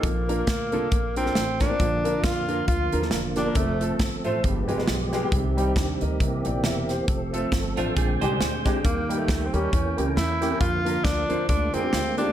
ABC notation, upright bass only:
X:1
M:4/4
L:1/8
Q:"Swing" 1/4=136
K:Bb
V:1 name="Upright bass" clef=bass
B,,,2 D,, C,, B,,,2 A,,,2 | B,,,2 F,,2 D,, E,, =E,,,2 | F,,,2 G,,, A,,, G,,, F,,, =B,,,2 | C,,2 E,, D,, C,, B,,, =E,,,2 |
F,,,2 G,,, A,,, B,,, C,, D,,2 | E,,2 D,, E,, =E,, ^C,, E,,2 | F,,2 D,, E,, D,, F,, D,,2 |]